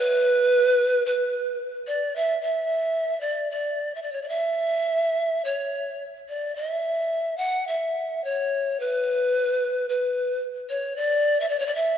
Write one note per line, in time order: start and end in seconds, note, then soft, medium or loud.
0.00 1.05 B4 loud
1.06 1.57 B4 medium
1.87 2.17 D5 medium
2.16 2.41 E5 loud
2.42 3.22 E5 medium
3.21 3.49 D5 medium
3.51 3.97 D5 medium
3.95 4.04 E5 medium
4.02 4.14 D5 medium
4.12 4.24 C#5 medium
4.22 4.30 D5 medium
4.29 5.46 E5 medium
5.45 6.03 C#5 medium
6.29 6.57 D5 medium
6.55 7.39 E5 medium
7.37 7.69 F#5 medium
7.68 8.26 E5 medium
8.24 8.81 C#5 medium
8.80 9.88 B4 loud
9.89 10.40 B4 medium
10.69 10.98 C#5 medium
10.96 11.42 D5 medium
11.40 11.50 E5 medium
11.49 11.61 D5 medium
11.59 11.68 C#5 medium
11.66 11.77 D5 medium
11.75 11.98 E5 medium